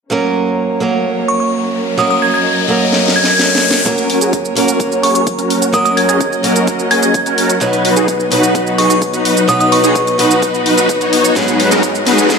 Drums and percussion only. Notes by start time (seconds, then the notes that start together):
2.92 snare
3.08 snare
3.24 snare
3.39 snare
3.55 snare
3.71 snare
3.86 kick, closed hi-hat, shaker
3.98 closed hi-hat, shaker
4.10 open hi-hat
4.21 closed hi-hat, shaker
4.33 kick, closed hi-hat, shaker
4.45 shaker
4.57 open hi-hat
4.68 closed hi-hat, shaker
4.80 kick, closed hi-hat, shaker
4.92 shaker
5.03 open hi-hat
5.15 closed hi-hat, shaker
5.27 kick, closed hi-hat, shaker
5.39 closed hi-hat, shaker
5.50 open hi-hat
5.62 closed hi-hat, shaker
5.74 kick, closed hi-hat, shaker
5.86 closed hi-hat, shaker
5.97 open hi-hat
6.09 closed hi-hat, shaker
6.21 kick, closed hi-hat, shaker
6.33 shaker
6.44 open hi-hat
6.56 closed hi-hat, shaker
6.67 kick, closed hi-hat, shaker
6.79 shaker
6.91 open hi-hat
7.03 closed hi-hat, shaker
7.14 kick, closed hi-hat, shaker
7.26 closed hi-hat, shaker
7.38 open hi-hat
7.50 closed hi-hat, shaker
7.61 kick, closed hi-hat, shaker
7.73 closed hi-hat, shaker
7.85 open hi-hat
7.97 closed hi-hat, shaker
8.08 kick, closed hi-hat, shaker
8.20 shaker
8.32 open hi-hat
8.43 closed hi-hat, shaker
8.55 kick, closed hi-hat, shaker
8.67 shaker
8.78 open hi-hat
8.90 closed hi-hat, shaker
9.02 kick, closed hi-hat, shaker
9.14 closed hi-hat, shaker
9.25 open hi-hat
9.37 closed hi-hat, shaker
9.49 kick, closed hi-hat, shaker
9.60 closed hi-hat, shaker
9.72 open hi-hat
9.84 closed hi-hat, shaker
9.96 kick, closed hi-hat, shaker
10.07 closed hi-hat, shaker
10.19 open hi-hat
10.31 closed hi-hat, shaker
10.42 kick, closed hi-hat, shaker
10.54 shaker
10.66 open hi-hat
10.78 closed hi-hat, shaker
10.89 kick, closed hi-hat, shaker
11.01 closed hi-hat, shaker
11.13 open hi-hat
11.25 closed hi-hat, shaker
11.36 kick, snare, closed hi-hat, shaker
11.48 closed hi-hat, shaker
11.60 open hi-hat
11.71 snare, closed hi-hat, shaker
11.83 kick, closed hi-hat, shaker
11.95 shaker
12.07 snare, open hi-hat
12.18 closed hi-hat, shaker
12.30 kick, snare, closed hi-hat, shaker